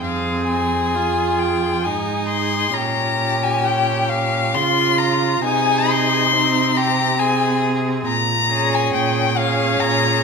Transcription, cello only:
0.04 1.87 F2 soft
1.85 2.75 G#2 soft
2.76 4.56 A#2 soft
4.54 5.44 C#3 soft
5.45 8.03 C3 medium
8.07 8.84 A#2 medium
8.94 9.71 A#2 medium
9.81 10.23 A#2 medium

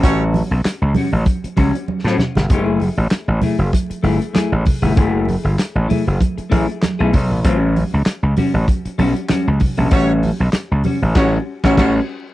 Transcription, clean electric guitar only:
0.04 0.32 G3 medium
0.04 0.33 C#4 medium
0.04 0.33 F#4 loud
0.52 muted clean electric guitar stroke soft
0.66 muted clean electric guitar stroke soft
0.96 1.09 G3 medium
0.96 1.09 C#4 medium
0.96 1.10 F#4 medium
1.13 muted clean electric guitar stroke medium
1.27 muted clean electric guitar stroke soft
1.44 muted clean electric guitar stroke soft
1.57 1.74 G3 medium
1.57 1.74 C#4 medium
1.57 1.74 F#4 medium
1.75 muted clean electric guitar stroke soft
1.88 muted clean electric guitar stroke soft
2.07 2.19 G3 medium
2.07 2.20 C#4 medium
2.07 2.20 F#4 medium
2.20 muted clean electric guitar stroke soft
2.39 muted clean electric guitar stroke medium
2.51 2.63 G#3 medium
2.51 2.64 D#4 medium
2.51 2.64 G4 loud
2.63 2.80 A3 medium
2.63 2.80 E4 medium
2.63 2.80 G#4 loud
2.99 muted clean electric guitar stroke soft
3.12 muted clean electric guitar stroke soft
3.42 3.55 A3 medium
3.42 3.56 E4 medium
3.42 3.56 G#4 medium
3.73 muted clean electric guitar stroke soft
3.90 muted clean electric guitar stroke soft
4.03 4.20 A3 medium
4.03 4.20 E4 medium
4.03 4.19 G#4 medium
4.20 muted clean electric guitar stroke soft
4.33 4.51 A3 medium
4.33 4.52 E4 medium
4.33 4.52 G#4 medium
4.65 muted clean electric guitar stroke soft
4.82 4.94 A3 medium
4.82 4.94 E4 medium
4.82 4.93 G#4 medium
4.96 5.25 A3 medium
4.96 5.26 E4 medium
4.96 5.26 G#4 loud
5.44 muted clean electric guitar stroke soft
5.58 muted clean electric guitar stroke soft
5.88 6.02 A3 medium
5.88 6.02 E4 medium
5.88 6.03 G#4 medium
6.07 muted clean electric guitar stroke soft
6.20 muted clean electric guitar stroke soft
6.38 muted clean electric guitar stroke medium
6.50 6.67 A3 medium
6.50 6.68 E4 medium
6.50 6.67 G#4 medium
6.68 muted clean electric guitar stroke medium
6.82 muted clean electric guitar stroke soft
6.99 7.12 A3 medium
6.99 7.12 E4 medium
6.99 7.13 G#4 medium
7.13 muted clean electric guitar stroke soft
7.30 muted clean electric guitar stroke soft
7.45 7.57 F#3 medium
7.45 7.57 C4 medium
7.45 7.58 F4 medium
7.57 7.74 G3 medium
7.57 7.74 C#4 medium
7.57 7.74 F#4 medium
7.93 muted clean electric guitar stroke soft
8.06 muted clean electric guitar stroke soft
8.37 8.50 G3 medium
8.37 8.51 C#4 medium
8.37 8.51 F#4 medium
8.69 muted clean electric guitar stroke soft
8.86 muted clean electric guitar stroke medium
8.98 9.15 G3 medium
8.98 9.15 C#4 medium
8.98 9.15 F#4 medium
9.16 muted clean electric guitar stroke soft
9.29 9.46 G3 medium
9.29 9.46 C#4 medium
9.29 9.47 F#4 medium
9.61 muted clean electric guitar stroke soft
9.77 9.89 G3 medium
9.77 9.89 C#4 medium
9.77 9.88 F#4 medium
9.91 10.20 G3 loud
9.91 10.20 C#4 loud
9.91 10.21 F#4 medium
10.40 muted clean electric guitar stroke soft
10.53 muted clean electric guitar stroke soft
10.85 10.98 G3 medium
10.85 10.98 C#4 medium
10.85 10.99 F#4 medium
11.03 muted clean electric guitar stroke soft
11.16 11.37 G3 medium
11.16 11.38 C#4 loud
11.16 11.38 F#4 loud
11.64 11.76 G3 loud
11.64 11.76 C#4 loud
11.64 11.76 F#4 loud
11.78 12.00 G3 medium
11.78 12.00 C#4 medium
11.78 11.99 F#4 medium

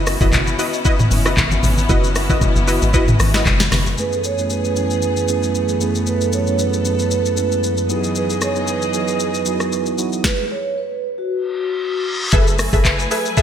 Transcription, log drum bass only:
0.00 0.17 F#1 loud
0.21 0.55 F#1 loud
1.11 1.34 F#1 medium
1.37 1.60 G#1 loud
1.63 1.86 G#1 loud
1.89 2.53 F#1 loud
2.56 2.79 F#1 loud
2.82 3.16 G#1 loud
3.20 3.43 G#1 medium
3.46 3.69 F#1 loud
3.72 3.95 F#1 loud
12.33 12.69 F#1 loud
12.73 13.07 F#1 loud

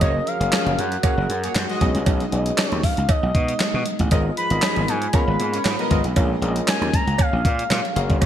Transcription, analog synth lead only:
0.02 0.29 D#5 loud
0.27 0.80 F5 loud
0.79 1.04 F#5 loud
1.04 1.77 F#5 loud
2.32 2.70 D#5 loud
2.70 2.85 C#5 loud
2.84 3.11 F5 loud
3.10 3.86 D#5 loud
4.37 4.91 B5 loud
4.89 5.16 G#5 loud
5.14 5.91 B5 loud
6.68 6.96 G#5 loud
6.94 7.22 A#5 loud
7.21 7.97 F5 loud

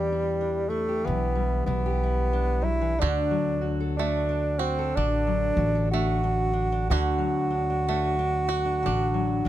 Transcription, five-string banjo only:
3.02 6.90 D3 medium
3.02 4.58 F#4 medium
3.99 5.92 A3 medium
4.59 6.91 F#4 medium
4.97 8.85 D4 medium
5.94 7.87 A3 medium
6.91 9.49 D3 medium
6.91 8.47 F#4 medium
7.89 9.49 A3 medium
8.49 9.49 F#4 medium
8.86 9.49 D4 medium

